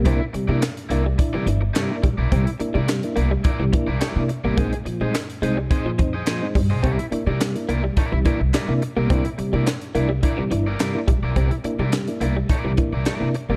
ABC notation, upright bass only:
X:1
M:4/4
L:1/16
Q:1/4=106
K:Cmix
V:1 name="Upright bass" clef=bass
C,, z2 C, z2 C,,2 z2 G,,,2 z2 B,,, =B,,, | C,, z2 C, z2 C,,2 z C,, z C,, z C, z A,,, | B,,, z2 B,, z2 C,,2 z2 F,,2 z2 G,, =B,,, | C,, z2 C, z2 C,,2 z C,, z C,, z C, z =B,,, |
C,, z2 C, z2 C,,2 z2 G,,,2 z2 B,,, =B,,, | C,, z2 C, z2 C,,2 z C,, z C,, z C, z A,,, |]